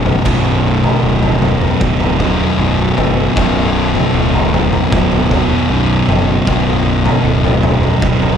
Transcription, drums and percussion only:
0.06 floor tom
0.25 kick, floor tom, splash
0.84 floor tom
1.23 floor tom
1.42 floor tom, mid tom
1.61 floor tom
1.81 kick, floor tom
2.00 floor tom
2.20 kick, mid tom
2.98 floor tom
3.37 kick, floor tom
3.95 floor tom
4.34 floor tom
4.54 floor tom, mid tom
4.73 floor tom
4.92 kick, floor tom
5.12 floor tom
5.31 kick, mid tom
6.09 floor tom
6.47 kick, floor tom
7.06 floor tom
7.44 floor tom
7.63 floor tom, mid tom
7.83 floor tom
8.02 kick, floor tom
8.22 floor tom

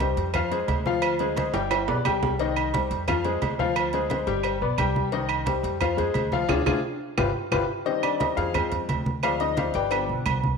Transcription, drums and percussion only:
0.00 cowbell, high conga, low agogo
0.17 cowbell, high conga
0.34 cowbell, high conga, low conga, low agogo, claves
0.52 cowbell, high conga
0.68 cowbell, high conga, low timbale, low agogo
0.86 high conga
1.02 cowbell, high conga, low agogo, claves
1.19 cowbell, high conga
1.36 cowbell, high conga, low agogo
1.54 cowbell, high timbale
1.71 cowbell, high conga, high timbale, low agogo, claves
1.88 high conga, low timbale
2.05 cowbell, high conga, low timbale, low agogo, claves
2.23 high conga, low timbale
2.39 cowbell, high conga
2.56 high conga, low agogo, claves
2.74 cowbell, high conga, low agogo
2.91 cowbell, high conga
3.08 cowbell, high conga, low conga, low agogo, claves
3.25 cowbell, high conga
3.42 cowbell, high conga, low timbale, low agogo
3.60 high conga
3.76 cowbell, high conga, low agogo, claves
3.93 cowbell, high conga
4.10 cowbell, high conga, low agogo
4.27 cowbell
4.43 cowbell, high conga, low agogo, claves
4.62 high conga
4.78 cowbell, high conga, low agogo, claves
4.96 high conga
5.12 cowbell, high conga
5.29 high conga, low agogo, claves
5.46 cowbell, high conga, low agogo
5.64 cowbell, high conga
5.81 cowbell, high conga, low conga, low agogo, claves
5.98 cowbell, high conga, low conga
6.14 cowbell, high conga, low agogo
6.32 high conga
6.49 cowbell, high conga, high timbale, claves
6.66 cowbell, high conga, high timbale, claves
7.18 cowbell, high conga, high timbale, claves
7.52 cowbell, high conga, high timbale, claves
7.86 cowbell, high conga
8.03 high conga, low agogo, claves
8.20 cowbell, high conga, low agogo
8.37 cowbell, high conga
8.54 cowbell, high conga, low conga, low agogo, claves
8.72 cowbell, high conga, low conga
8.89 cowbell, high conga, low agogo
9.06 high conga
9.23 cowbell, high conga, low agogo, claves
9.40 cowbell, high conga
9.57 cowbell, high conga, low agogo
9.74 cowbell
9.91 cowbell, high conga, low agogo, claves
10.09 high conga
10.26 cowbell, high conga, low agogo, claves
10.44 high conga

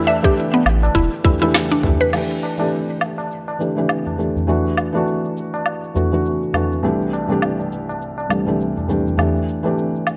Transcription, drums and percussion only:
0.07 tabla na, tabla tin, shaker
0.24 kick, tabla na, shaker
0.36 tabla tin, shaker
0.54 tabla tin, shaker
0.66 low woodblock, shaker
0.82 tabla na, tabla tin, shaker
0.95 kick, shaker
1.14 shaker
1.25 kick, tabla tin, tabla ge, shaker
1.43 shaker
1.54 snare, low woodblock, shaker
1.72 shaker
1.83 kick, tabla ge, shaker
2.02 shaker
2.13 crash, low woodblock, shaker
2.31 shaker
2.43 tabla na, tabla tin, shaker
2.60 tabla na, shaker
2.72 tabla tin, shaker
2.88 tabla tin, shaker
3.01 low woodblock, shaker
3.18 tabla na, tabla tin, shaker
3.31 shaker
3.48 tabla na, shaker
3.61 shaker
3.78 shaker
3.89 low woodblock, shaker
4.06 tabla na, tabla ge, shaker
4.20 shaker
4.36 tabla ge, shaker
4.48 tabla ge, shaker
4.66 shaker
4.77 tabla tin, low woodblock, shaker
4.95 tabla na, shaker
5.08 shaker
5.25 tabla tin, shaker
5.37 shaker
5.53 tabla na, tabla tin, shaker
5.66 low woodblock, shaker
5.84 shaker
5.96 tabla ge, shaker
6.13 shaker
6.25 shaker
6.43 shaker
6.54 tabla ge, low woodblock, shaker
6.72 shaker
6.84 shaker
7.01 shaker
7.13 tabla na, tabla tin, shaker
7.30 tabla na, shaker
7.42 tabla tin, low woodblock, shaker
7.60 tabla tin, shaker
7.72 shaker
7.89 tabla na, tabla tin, shaker
8.02 shaker
8.18 tabla na, shaker
8.30 low woodblock, shaker
8.48 shaker
8.61 shaker
8.77 tabla na, tabla ge, shaker
8.90 shaker
9.07 tabla ge, shaker
9.18 tabla ge, low woodblock, shaker
9.37 shaker
9.48 tabla tin, shaker
9.65 tabla na, shaker
9.77 tabla tin, shaker
9.95 tabla tin, shaker
10.07 low woodblock, shaker

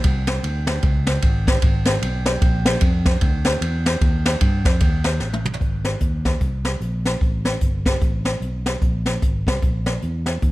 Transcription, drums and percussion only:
0.04 kick, ride bell
0.27 snare, ride bell
0.44 ride bell
0.67 snare, ride bell
0.83 kick, ride bell
1.07 snare, ride bell
1.22 kick, ride bell
1.47 kick, snare, ride bell
1.62 kick, ride bell
1.85 snare, ride bell
2.02 ride bell
2.26 snare, ride bell
2.42 kick, ride bell
2.65 snare, ride bell
2.81 kick, ride bell
3.06 kick, snare, ride bell
3.21 kick, ride bell
3.45 snare, ride bell
3.62 ride bell
3.86 snare, ride bell
4.01 kick, ride bell
4.26 snare, ride bell
4.41 kick, ride bell
4.65 kick, snare, ride bell
4.80 kick, ride bell
5.04 snare, ride bell
5.20 snare
5.33 high tom
5.45 mid tom
5.54 floor tom
5.61 kick, closed hi-hat
5.85 snare, closed hi-hat
6.00 kick, closed hi-hat
6.25 kick, snare, closed hi-hat
6.40 kick, closed hi-hat
6.64 snare, closed hi-hat
6.81 closed hi-hat
7.05 snare, closed hi-hat
7.21 kick, closed hi-hat
7.45 snare, closed hi-hat
7.61 kick, closed hi-hat
7.86 kick, snare, closed hi-hat
8.01 kick, closed hi-hat
8.25 snare, closed hi-hat
8.42 closed hi-hat
8.66 snare, closed hi-hat
8.81 kick, closed hi-hat
9.06 snare, closed hi-hat
9.22 kick, closed hi-hat
9.47 kick, snare, closed hi-hat
9.62 kick, closed hi-hat
9.86 snare, closed hi-hat
10.02 closed hi-hat
10.26 snare, closed hi-hat
10.42 kick, closed hi-hat

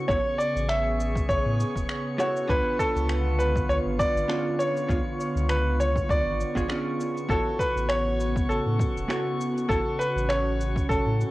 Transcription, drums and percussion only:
0.09 kick, cabasa
0.40 cabasa
0.57 cabasa
0.69 finger snap, cabasa
1.00 cabasa
1.15 kick, cabasa
1.29 kick, cabasa
1.60 cabasa
1.76 kick, cabasa
1.89 finger snap, cabasa
2.20 cabasa
2.37 cabasa
2.49 kick, cabasa
2.79 kick, cabasa
2.96 cabasa
3.09 finger snap, cabasa
3.40 cabasa
3.56 kick, cabasa
3.70 cabasa
3.99 kick, cabasa
4.17 cabasa
4.30 finger snap, cabasa
4.60 cabasa
4.77 cabasa
4.89 kick, cabasa
5.20 cabasa
5.37 cabasa
5.50 finger snap, cabasa
5.81 cabasa
5.96 kick, cabasa
6.09 kick, cabasa
6.41 cabasa
6.56 kick, cabasa
6.70 finger snap, cabasa
7.01 cabasa
7.17 cabasa
7.29 kick, cabasa
7.59 kick, cabasa
7.77 cabasa
7.90 finger snap, cabasa
8.20 cabasa
8.36 kick, cabasa
8.51 cabasa
8.79 kick, cabasa
8.97 cabasa
9.10 finger snap, cabasa
9.41 cabasa
9.58 cabasa
9.69 kick, cabasa
10.01 cabasa
10.18 cabasa
10.30 finger snap, cabasa
10.61 cabasa
10.76 kick, cabasa
10.89 kick, cabasa
11.21 cabasa

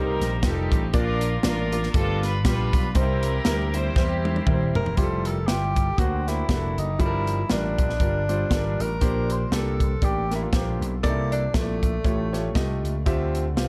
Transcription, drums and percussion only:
0.21 snare, closed hi-hat
0.43 kick, snare, closed hi-hat
0.72 kick, closed hi-hat
0.94 kick, closed hi-hat
1.21 closed hi-hat
1.43 snare, closed hi-hat
1.72 closed hi-hat
1.83 snare
1.94 kick, closed hi-hat
2.23 snare, closed hi-hat
2.45 kick, snare, closed hi-hat
2.73 kick, closed hi-hat
2.95 kick, closed hi-hat
3.23 closed hi-hat
3.45 snare, closed hi-hat
3.74 closed hi-hat
3.96 kick, snare
4.25 high tom
4.36 high tom
4.47 kick, mid tom
4.75 floor tom
4.86 floor tom
4.97 kick, closed hi-hat
5.25 closed hi-hat
5.48 snare, closed hi-hat
5.76 kick, closed hi-hat
5.98 kick, closed hi-hat
6.28 snare, closed hi-hat
6.49 kick, snare, closed hi-hat
6.78 closed hi-hat
7.00 kick, closed hi-hat
7.27 closed hi-hat
7.50 snare, closed hi-hat
7.79 kick, closed hi-hat
7.90 snare
8.00 kick, closed hi-hat
8.29 closed hi-hat
8.51 kick, snare, closed hi-hat
8.80 closed hi-hat
9.01 kick, closed hi-hat
9.30 closed hi-hat
9.52 snare, closed hi-hat
9.80 kick, closed hi-hat
10.02 kick, closed hi-hat
10.31 snare, closed hi-hat
10.53 kick, snare, closed hi-hat
10.82 closed hi-hat
11.04 kick, closed hi-hat
11.32 closed hi-hat
11.54 kick, snare, closed hi-hat
11.83 kick, closed hi-hat
12.04 kick, closed hi-hat
12.34 snare, closed hi-hat
12.55 kick, snare, closed hi-hat
12.85 closed hi-hat
13.06 kick, closed hi-hat
13.35 closed hi-hat
13.57 snare, closed hi-hat

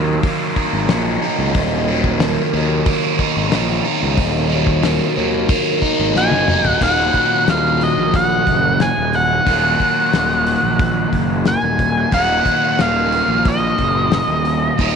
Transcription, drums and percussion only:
0.23 kick, open hi-hat
0.56 kick
0.89 snare, open hi-hat
1.54 kick, open hi-hat
2.04 kick
2.20 snare, open hi-hat
2.86 kick, open hi-hat
3.19 kick
3.52 snare, open hi-hat
4.18 kick, open hi-hat
4.67 kick
4.83 snare, open hi-hat
5.49 kick, open hi-hat
5.82 kick
6.16 snare
6.31 high tom
6.48 mid tom
6.65 floor tom
6.81 kick, crash
7.14 kick, open hi-hat
7.48 snare, open hi-hat
7.81 open hi-hat
8.14 kick, open hi-hat
8.47 kick, open hi-hat
8.80 snare, open hi-hat
9.13 open hi-hat
9.47 kick, open hi-hat
9.80 kick, open hi-hat
10.13 snare, open hi-hat
10.47 open hi-hat
10.79 kick, open hi-hat
11.13 kick, open hi-hat
11.45 snare, open hi-hat
11.79 kick, open hi-hat
12.12 kick, open hi-hat
12.45 kick, open hi-hat
12.79 snare, open hi-hat
13.12 open hi-hat
13.45 kick, open hi-hat
13.78 kick, open hi-hat
14.12 snare, open hi-hat
14.45 open hi-hat
14.79 kick, open hi-hat

